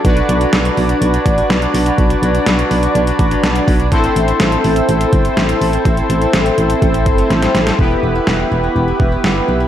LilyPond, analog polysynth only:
\new Staff \with { instrumentName = "Analog polysynth" } { \time 4/4 \key b \phrygian \tempo 4 = 124 <d' fis' b' d''>1~ | <d' fis' b' d''>1 | <c' e' a' c''>1~ | <c' e' a' c''>1 |
<b e' g' b'>1 | }